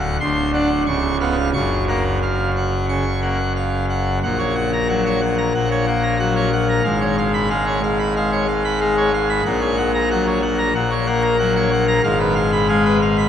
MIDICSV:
0, 0, Header, 1, 2, 480
1, 0, Start_track
1, 0, Key_signature, 6, "major"
1, 0, Tempo, 668896
1, 1109, Time_signature, 4, 2, 24, 8
1, 3039, Tempo, 650054
1, 9724, End_track
2, 0, Start_track
2, 0, Title_t, "Pipe organ"
2, 0, Program_c, 0, 19
2, 0, Note_on_c, 0, 26, 79
2, 0, Note_on_c, 0, 38, 78
2, 0, Note_on_c, 0, 78, 54
2, 119, Note_off_c, 0, 78, 0
2, 124, Note_off_c, 0, 38, 0
2, 125, Note_off_c, 0, 26, 0
2, 149, Note_on_c, 0, 38, 61
2, 150, Note_on_c, 0, 84, 81
2, 152, Note_on_c, 0, 26, 70
2, 363, Note_off_c, 0, 84, 0
2, 386, Note_on_c, 0, 78, 52
2, 387, Note_on_c, 0, 62, 46
2, 494, Note_off_c, 0, 62, 0
2, 590, Note_off_c, 0, 78, 0
2, 611, Note_off_c, 0, 38, 0
2, 612, Note_off_c, 0, 26, 0
2, 621, Note_on_c, 0, 37, 63
2, 622, Note_on_c, 0, 85, 69
2, 624, Note_on_c, 0, 25, 58
2, 838, Note_off_c, 0, 85, 0
2, 865, Note_on_c, 0, 77, 52
2, 866, Note_on_c, 0, 59, 44
2, 974, Note_off_c, 0, 59, 0
2, 1072, Note_off_c, 0, 77, 0
2, 1091, Note_off_c, 0, 37, 0
2, 1092, Note_off_c, 0, 25, 0
2, 1103, Note_on_c, 0, 85, 73
2, 1104, Note_on_c, 0, 30, 57
2, 1107, Note_on_c, 0, 42, 61
2, 1323, Note_off_c, 0, 85, 0
2, 1349, Note_on_c, 0, 58, 46
2, 1352, Note_on_c, 0, 78, 46
2, 1459, Note_off_c, 0, 58, 0
2, 1568, Note_off_c, 0, 78, 0
2, 1595, Note_on_c, 0, 77, 42
2, 1800, Note_off_c, 0, 77, 0
2, 1840, Note_on_c, 0, 78, 42
2, 2053, Note_off_c, 0, 78, 0
2, 2075, Note_on_c, 0, 85, 49
2, 2077, Note_on_c, 0, 49, 45
2, 2185, Note_off_c, 0, 49, 0
2, 2291, Note_off_c, 0, 85, 0
2, 2312, Note_on_c, 0, 58, 41
2, 2313, Note_on_c, 0, 78, 43
2, 2422, Note_off_c, 0, 58, 0
2, 2530, Note_off_c, 0, 78, 0
2, 2556, Note_on_c, 0, 77, 40
2, 2762, Note_off_c, 0, 77, 0
2, 2796, Note_on_c, 0, 78, 50
2, 3001, Note_off_c, 0, 78, 0
2, 3008, Note_off_c, 0, 30, 0
2, 3009, Note_off_c, 0, 42, 0
2, 3036, Note_on_c, 0, 34, 69
2, 3038, Note_on_c, 0, 78, 62
2, 3039, Note_on_c, 0, 46, 71
2, 3147, Note_off_c, 0, 78, 0
2, 3151, Note_on_c, 0, 73, 54
2, 3263, Note_off_c, 0, 73, 0
2, 3273, Note_on_c, 0, 78, 56
2, 3385, Note_off_c, 0, 78, 0
2, 3404, Note_on_c, 0, 82, 67
2, 3511, Note_off_c, 0, 82, 0
2, 3522, Note_on_c, 0, 78, 63
2, 3525, Note_on_c, 0, 54, 52
2, 3631, Note_off_c, 0, 78, 0
2, 3648, Note_on_c, 0, 73, 58
2, 3740, Note_off_c, 0, 54, 0
2, 3754, Note_off_c, 0, 73, 0
2, 3760, Note_on_c, 0, 78, 49
2, 3870, Note_off_c, 0, 78, 0
2, 3884, Note_on_c, 0, 82, 56
2, 3992, Note_off_c, 0, 46, 0
2, 3992, Note_off_c, 0, 82, 0
2, 3995, Note_off_c, 0, 34, 0
2, 4006, Note_on_c, 0, 46, 65
2, 4007, Note_on_c, 0, 78, 58
2, 4010, Note_on_c, 0, 34, 59
2, 4114, Note_off_c, 0, 78, 0
2, 4130, Note_on_c, 0, 73, 56
2, 4236, Note_off_c, 0, 73, 0
2, 4244, Note_on_c, 0, 58, 53
2, 4247, Note_on_c, 0, 78, 55
2, 4355, Note_off_c, 0, 78, 0
2, 4366, Note_on_c, 0, 82, 57
2, 4461, Note_off_c, 0, 58, 0
2, 4474, Note_off_c, 0, 82, 0
2, 4485, Note_on_c, 0, 78, 63
2, 4487, Note_on_c, 0, 54, 56
2, 4594, Note_off_c, 0, 78, 0
2, 4608, Note_on_c, 0, 73, 55
2, 4704, Note_off_c, 0, 54, 0
2, 4716, Note_off_c, 0, 73, 0
2, 4730, Note_on_c, 0, 78, 66
2, 4838, Note_off_c, 0, 78, 0
2, 4852, Note_on_c, 0, 82, 59
2, 4943, Note_off_c, 0, 46, 0
2, 4944, Note_off_c, 0, 34, 0
2, 4954, Note_off_c, 0, 82, 0
2, 4961, Note_on_c, 0, 32, 69
2, 4961, Note_on_c, 0, 44, 73
2, 4961, Note_on_c, 0, 77, 61
2, 5072, Note_off_c, 0, 77, 0
2, 5088, Note_on_c, 0, 73, 52
2, 5196, Note_off_c, 0, 73, 0
2, 5212, Note_on_c, 0, 77, 59
2, 5319, Note_off_c, 0, 77, 0
2, 5330, Note_on_c, 0, 83, 66
2, 5438, Note_off_c, 0, 83, 0
2, 5448, Note_on_c, 0, 56, 56
2, 5450, Note_on_c, 0, 77, 64
2, 5558, Note_off_c, 0, 77, 0
2, 5572, Note_on_c, 0, 73, 60
2, 5665, Note_off_c, 0, 56, 0
2, 5679, Note_off_c, 0, 73, 0
2, 5696, Note_on_c, 0, 77, 52
2, 5802, Note_off_c, 0, 77, 0
2, 5813, Note_on_c, 0, 83, 59
2, 5921, Note_off_c, 0, 83, 0
2, 5939, Note_on_c, 0, 56, 58
2, 5939, Note_on_c, 0, 77, 61
2, 6044, Note_off_c, 0, 77, 0
2, 6059, Note_on_c, 0, 73, 58
2, 6152, Note_off_c, 0, 56, 0
2, 6164, Note_off_c, 0, 73, 0
2, 6172, Note_on_c, 0, 77, 55
2, 6281, Note_off_c, 0, 77, 0
2, 6296, Note_on_c, 0, 83, 65
2, 6403, Note_off_c, 0, 83, 0
2, 6415, Note_on_c, 0, 77, 58
2, 6416, Note_on_c, 0, 56, 57
2, 6523, Note_off_c, 0, 77, 0
2, 6537, Note_on_c, 0, 73, 59
2, 6631, Note_off_c, 0, 56, 0
2, 6644, Note_off_c, 0, 73, 0
2, 6658, Note_on_c, 0, 77, 62
2, 6765, Note_off_c, 0, 77, 0
2, 6776, Note_on_c, 0, 83, 64
2, 6863, Note_off_c, 0, 32, 0
2, 6863, Note_off_c, 0, 44, 0
2, 6879, Note_off_c, 0, 83, 0
2, 6891, Note_on_c, 0, 34, 77
2, 6892, Note_on_c, 0, 46, 74
2, 6893, Note_on_c, 0, 78, 73
2, 7002, Note_off_c, 0, 78, 0
2, 7009, Note_on_c, 0, 73, 58
2, 7120, Note_off_c, 0, 73, 0
2, 7125, Note_on_c, 0, 78, 60
2, 7237, Note_off_c, 0, 78, 0
2, 7252, Note_on_c, 0, 82, 85
2, 7361, Note_off_c, 0, 82, 0
2, 7375, Note_on_c, 0, 78, 76
2, 7377, Note_on_c, 0, 54, 60
2, 7483, Note_off_c, 0, 78, 0
2, 7492, Note_on_c, 0, 73, 66
2, 7590, Note_off_c, 0, 54, 0
2, 7601, Note_off_c, 0, 73, 0
2, 7609, Note_on_c, 0, 78, 62
2, 7719, Note_off_c, 0, 78, 0
2, 7727, Note_on_c, 0, 82, 64
2, 7831, Note_off_c, 0, 46, 0
2, 7836, Note_off_c, 0, 34, 0
2, 7837, Note_off_c, 0, 82, 0
2, 7846, Note_on_c, 0, 46, 70
2, 7849, Note_on_c, 0, 78, 70
2, 7850, Note_on_c, 0, 34, 73
2, 7958, Note_off_c, 0, 78, 0
2, 7968, Note_on_c, 0, 73, 63
2, 8077, Note_off_c, 0, 73, 0
2, 8084, Note_on_c, 0, 58, 58
2, 8084, Note_on_c, 0, 78, 60
2, 8194, Note_off_c, 0, 78, 0
2, 8200, Note_on_c, 0, 82, 72
2, 8301, Note_off_c, 0, 58, 0
2, 8311, Note_off_c, 0, 82, 0
2, 8323, Note_on_c, 0, 78, 68
2, 8325, Note_on_c, 0, 54, 64
2, 8432, Note_off_c, 0, 78, 0
2, 8445, Note_on_c, 0, 73, 66
2, 8539, Note_off_c, 0, 54, 0
2, 8553, Note_off_c, 0, 73, 0
2, 8559, Note_on_c, 0, 78, 71
2, 8669, Note_off_c, 0, 78, 0
2, 8682, Note_on_c, 0, 82, 70
2, 8772, Note_off_c, 0, 46, 0
2, 8775, Note_off_c, 0, 34, 0
2, 8785, Note_off_c, 0, 82, 0
2, 8799, Note_on_c, 0, 32, 89
2, 8799, Note_on_c, 0, 77, 74
2, 8800, Note_on_c, 0, 44, 88
2, 8908, Note_off_c, 0, 77, 0
2, 8918, Note_on_c, 0, 71, 62
2, 9027, Note_off_c, 0, 71, 0
2, 9036, Note_on_c, 0, 77, 64
2, 9146, Note_off_c, 0, 77, 0
2, 9161, Note_on_c, 0, 83, 83
2, 9268, Note_off_c, 0, 83, 0
2, 9279, Note_on_c, 0, 56, 68
2, 9280, Note_on_c, 0, 77, 72
2, 9388, Note_off_c, 0, 77, 0
2, 9405, Note_on_c, 0, 71, 68
2, 9494, Note_off_c, 0, 56, 0
2, 9511, Note_off_c, 0, 71, 0
2, 9525, Note_on_c, 0, 77, 69
2, 9631, Note_off_c, 0, 77, 0
2, 9645, Note_on_c, 0, 83, 76
2, 9724, Note_off_c, 0, 32, 0
2, 9724, Note_off_c, 0, 44, 0
2, 9724, Note_off_c, 0, 83, 0
2, 9724, End_track
0, 0, End_of_file